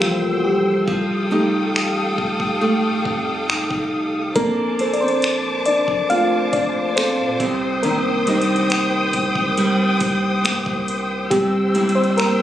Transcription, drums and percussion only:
0.02 finger snap
0.88 kick
1.76 finger snap
2.18 kick
2.40 kick
3.05 kick
3.50 finger snap
3.71 kick
4.36 kick, closed hi-hat
4.79 closed hi-hat
4.94 closed hi-hat
5.08 closed hi-hat
5.22 finger snap, closed hi-hat
5.66 closed hi-hat
5.88 kick
6.10 closed hi-hat
6.53 kick, closed hi-hat
6.97 finger snap, closed hi-hat
7.40 kick, closed hi-hat
7.83 closed hi-hat
8.27 closed hi-hat
8.41 closed hi-hat
8.56 closed hi-hat
8.70 finger snap, closed hi-hat
9.13 kick, closed hi-hat
9.35 kick
9.57 closed hi-hat
10.00 kick, closed hi-hat
10.45 finger snap, closed hi-hat
10.66 kick
10.88 closed hi-hat
11.31 kick, closed hi-hat
11.75 closed hi-hat
11.89 closed hi-hat
12.04 closed hi-hat
12.18 finger snap, closed hi-hat

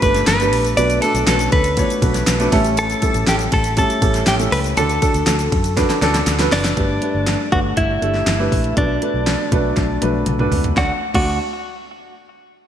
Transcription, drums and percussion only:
0.02 kick, ride, shaker
0.15 snare, ride, shaker
0.27 snare, ride, shaker
0.40 ride, shaker
0.53 open hi-hat, ride
0.65 ride, shaker
0.77 ride, shaker
0.90 ride, shaker
1.02 ride, shaker
1.15 ride, shaker
1.27 snare, ride, shaker
1.39 ride, shaker
1.52 kick, ride
1.64 ride, shaker
1.77 kick, ride, shaker
1.90 ride, shaker
2.02 kick, ride, shaker
2.14 snare, ride, shaker
2.27 snare, ride, shaker
2.40 ride, shaker
2.52 kick, open hi-hat, ride
2.64 ride, shaker
2.77 ride, shaker
2.90 ride, shaker
3.02 kick, ride, shaker
3.14 ride, shaker
3.27 snare, ride, shaker
3.39 ride, shaker
3.52 kick, ride
3.64 ride, shaker
3.77 kick, ride, shaker
3.90 ride, shaker
4.02 kick, ride, shaker
4.14 snare, ride, shaker
4.26 snare, ride, shaker
4.40 ride, shaker
4.52 open hi-hat, ride
4.64 ride, shaker
4.77 ride, shaker
4.89 ride, shaker
5.02 kick, ride, shaker
5.14 ride, shaker
5.26 snare, ride, shaker
5.39 ride, shaker
5.52 kick, ride
5.64 ride, shaker
5.77 kick, snare, ride, shaker
5.90 snare, ride, shaker
6.02 snare, ride, shaker
6.14 snare, ride, shaker
6.26 snare, ride, shaker
6.39 snare, ride, shaker
6.52 snare, open hi-hat, ride
6.64 snare, ride, shaker
6.77 kick, closed hi-hat
7.02 closed hi-hat
7.27 snare, closed hi-hat
7.52 kick, closed hi-hat
7.77 kick, closed hi-hat
8.02 closed hi-hat
8.14 snare
8.27 snare, closed hi-hat
8.52 kick, open hi-hat
8.64 closed hi-hat
8.77 kick, closed hi-hat
9.02 closed hi-hat
9.27 snare, closed hi-hat
9.52 kick, closed hi-hat
9.76 kick, snare, closed hi-hat
10.02 closed hi-hat, high tom
10.26 closed hi-hat, mid tom
10.39 mid tom
10.52 floor tom, open hi-hat
10.64 closed hi-hat, floor tom
10.77 kick, snare
11.14 kick, crash

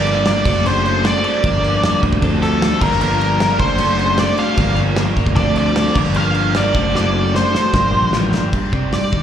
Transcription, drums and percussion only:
0.06 crash
0.25 snare, crash
0.45 kick, crash
0.66 crash
0.85 crash
1.05 snare, crash
1.24 crash
1.44 kick, crash
1.64 crash
1.83 snare, crash
2.03 kick, crash
2.13 kick
2.22 kick, crash
2.43 snare, crash
2.62 snare, crash
2.81 kick, crash
2.92 snare
3.01 crash
3.21 crash
3.40 snare, crash
3.60 kick, crash
3.78 crash
3.99 crash
4.18 snare, crash
4.37 crash
4.57 kick, crash
4.76 crash
4.96 snare, crash
5.16 kick, crash
5.26 kick
5.36 kick, crash
5.56 crash
5.76 snare, crash
5.95 kick, crash
6.14 crash
6.34 crash
6.55 snare, crash
6.75 kick, crash
6.95 snare
7.35 snare
7.55 snare
7.74 kick, snare
8.13 snare
8.34 snare
8.53 kick, crash
8.73 kick
8.93 snare, open hi-hat
9.13 kick

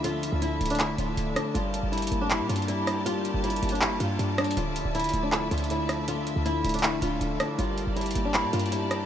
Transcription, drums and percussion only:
0.04 closed hi-hat
0.23 closed hi-hat
0.42 closed hi-hat
0.61 closed hi-hat, open hi-hat
0.66 closed hi-hat
0.70 closed hi-hat
0.75 closed hi-hat
0.80 clap, closed hi-hat
0.98 closed hi-hat
1.17 closed hi-hat
1.36 cross-stick, closed hi-hat
1.55 closed hi-hat
1.74 closed hi-hat
1.93 closed hi-hat
1.98 closed hi-hat
2.02 closed hi-hat
2.07 closed hi-hat
2.12 closed hi-hat
2.31 clap, closed hi-hat
2.50 closed hi-hat
2.56 closed hi-hat
2.62 closed hi-hat
2.68 closed hi-hat
2.87 cross-stick, closed hi-hat
3.06 closed hi-hat
3.25 closed hi-hat
3.44 closed hi-hat
3.50 closed hi-hat
3.56 closed hi-hat
3.63 closed hi-hat, open hi-hat
3.69 closed hi-hat
3.75 closed hi-hat
3.82 clap, closed hi-hat
4.00 closed hi-hat
4.19 closed hi-hat
4.38 cross-stick, closed hi-hat
4.44 closed hi-hat
4.51 closed hi-hat
4.57 closed hi-hat
4.76 closed hi-hat
4.95 closed hi-hat
5.00 closed hi-hat
5.04 closed hi-hat
5.09 closed hi-hat
5.14 closed hi-hat
5.32 clap, closed hi-hat
5.51 closed hi-hat
5.58 closed hi-hat
5.64 closed hi-hat
5.70 closed hi-hat
5.89 cross-stick, closed hi-hat
6.08 closed hi-hat
6.27 closed hi-hat
6.46 closed hi-hat
6.64 closed hi-hat, open hi-hat
6.69 closed hi-hat
6.74 closed hi-hat
6.79 closed hi-hat
6.83 clap, closed hi-hat
7.02 closed hi-hat
7.21 closed hi-hat
7.40 cross-stick, closed hi-hat
7.59 closed hi-hat
7.78 closed hi-hat
7.97 closed hi-hat
8.01 closed hi-hat
8.06 closed hi-hat
8.11 closed hi-hat
8.15 closed hi-hat
8.34 clap, closed hi-hat
8.53 closed hi-hat
8.59 closed hi-hat
8.66 closed hi-hat
8.72 closed hi-hat
8.91 cross-stick, closed hi-hat

